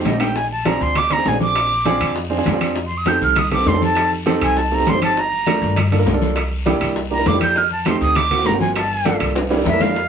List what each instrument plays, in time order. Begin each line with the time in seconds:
0.05 upright bass A#1, flute D#5, low bongo, high conga, high timbale, low timbale, short guiro, maracas
0.12 grand piano A3 C4 D#4 G4
0.20 flute G5, low bongo, high timbale, short guiro, claves, maracas
0.36 flute G#5, high bongo, high conga, long guiro, maracas
0.51 flute A5, high conga, maracas
0.65 grand piano C4 D4 F4 G#4, flute A#5, high bongo, high conga, high timbale, low timbale, short guiro, claves, maracas
0.80 upright bass D2, flute C6, high bongo, high conga, short guiro, maracas
0.95 flute D6, high bongo, high conga, low conga, high timbale, long guiro, claves, maracas
1.10 grand piano C4 D4 F4 G#4, flute A#5, high bongo, high conga, low conga, high timbale, maracas
1.18 grand piano C4 D4 F4 G#4
1.26 upright bass A#1, flute G#5, high bongo, low bongo, high conga, low timbale, short guiro, maracas
1.32 grand piano C4 D4 F4 G#4
1.40 flute D6, high bongo, high conga, short guiro, maracas
1.55 high bongo, high timbale, long guiro, claves, maracas
1.71 high conga, maracas
1.85 grand piano C4 D4 F4 G#4, high bongo, high conga, high timbale, low timbale, short guiro, maracas
2.00 upright bass F2, high bongo, high conga, high timbale, short guiro, claves, maracas
2.16 high bongo, high conga, long guiro, maracas
2.30 grand piano C4 D4 F4 G#4, high bongo, high conga, maracas
2.38 grand piano C4 D4 F4 G#4
2.45 upright bass F2, high bongo, low bongo, high conga, high timbale, low timbale, short guiro, maracas
2.53 grand piano C4 D4 F4 G#4
2.61 high bongo, high conga, high timbale, short guiro, claves, maracas
2.75 high bongo, high conga, long guiro, maracas
2.87 flute C6
2.91 high conga, maracas
2.98 flute D#6
3.06 grand piano C4 D#4 G4 A4, flute G6, high bongo, high conga, high timbale, low timbale, short guiro, claves, maracas
3.21 upright bass C2, flute F6, high bongo, high conga, short guiro, maracas
3.36 flute D#6, high bongo, high conga, low conga, high timbale, long guiro, claves, maracas
3.51 grand piano C4 D#4 G4 A4, flute D6, high bongo, high conga, low conga, high timbale, maracas
3.58 grand piano C4 D#4 G4 A4
3.66 upright bass F2, flute C6, high bongo, low bongo, high conga, low timbale, short guiro, maracas
3.74 grand piano C4 D#4 G4 A4
3.81 flute A5, high bongo, high conga, short guiro, maracas
3.95 high bongo, high conga, high timbale, long guiro, claves, maracas
4.12 high conga, maracas
4.26 grand piano C4 D#4 G4 A4, high bongo, high conga, high timbale, low timbale, short guiro, maracas
4.41 upright bass C2, flute G#5, high bongo, high conga, high timbale, short guiro, claves, maracas
4.57 flute A5, high bongo, high conga, long guiro, maracas
4.72 grand piano C4 D#4 G4 A4, flute A#5, high bongo, high conga, maracas
4.79 grand piano C4 D#4 G4 A4
4.87 upright bass G1, flute C6, high bongo, low bongo, high conga, high timbale, low timbale, short guiro, maracas
4.94 grand piano C4 D#4 G4 C5
5.02 flute A5, high bongo, high conga, high timbale, short guiro, claves, maracas
5.17 flute A#5, high bongo, high conga, long guiro, maracas
5.32 high conga, maracas
5.46 grand piano A3 A#3 D4 F4, high bongo, high conga, high timbale, low timbale, short guiro, claves, maracas
5.62 upright bass G2, high bongo, high conga, short guiro, maracas
5.76 high bongo, high conga, low conga, high timbale, long guiro, claves, maracas
5.91 grand piano A#3 D4 F4 A4, high bongo, high conga, low conga, high timbale, maracas
5.99 grand piano A#3 D4 F4 A#4
6.06 upright bass C2, high bongo, low bongo, high conga, low timbale, short guiro, maracas
6.14 grand piano A#3 D4 F4 A4
6.21 high bongo, high conga, short guiro, maracas
6.36 high bongo, high conga, high timbale, claves, maracas
6.51 high conga, maracas
6.66 grand piano A#3 D4 E4 G4, high bongo, high conga, high timbale, low timbale, short guiro, maracas
6.81 upright bass C2, high bongo, high conga, high timbale, short guiro, claves, maracas
6.96 high bongo, high conga, long guiro, maracas
7.11 grand piano A#3 D4 E4 G4, flute A#5, high bongo, high conga, maracas
7.19 grand piano A#3 D4 E4 A#4
7.26 upright bass F2, flute D6, high bongo, low bongo, high conga, high timbale, low timbale, short guiro, maracas
7.33 grand piano A#3 D4 E4 G4
7.41 flute G6, high bongo, high conga, high timbale, short guiro, claves, maracas
7.56 flute F6, high bongo, high conga, long guiro, maracas
7.71 flute A5, high conga, maracas
7.85 grand piano A3 C4 D#4 G4, flute C6, high bongo, high conga, high timbale, low timbale, short guiro, claves, maracas
8.01 upright bass D2, flute D#6, high bongo, high conga, short guiro, maracas
8.15 flute D6, high bongo, high conga, low conga, high timbale, long guiro, claves, maracas
8.31 grand piano A#3 C4 F4 F#4, high bongo, high conga, low conga, high timbale, maracas
8.38 grand piano A#3 C4 F4 F#4
8.46 upright bass G1, flute A#5, high bongo, low bongo, high conga, low timbale, short guiro, maracas
8.54 grand piano A#3 C4 F4 F#4
8.61 flute G#5, high bongo, high conga, short guiro, maracas
8.76 flute A5, high bongo, high conga, high timbale, long guiro, claves, maracas
8.91 high conga, maracas
9.05 grand piano A#3 D4 F4 A4, high bongo, high conga, high timbale, low timbale, short guiro, maracas
9.20 upright bass C2, high bongo, high conga, high timbale, short guiro, claves, maracas
9.35 high bongo, high conga, high timbale, long guiro, maracas
9.50 grand piano A#3 D4 E4 G4, high bongo, high conga, high timbale, maracas
9.58 grand piano A#3 D4 E4 G4
9.65 upright bass F2, flute E5, low bongo, high conga, low timbale, short guiro, maracas
9.73 grand piano A#3 D4 E4 A#4
9.80 flute F5, low bongo, high conga, low timbale, short guiro, claves, maracas
9.95 high bongo, high conga, maracas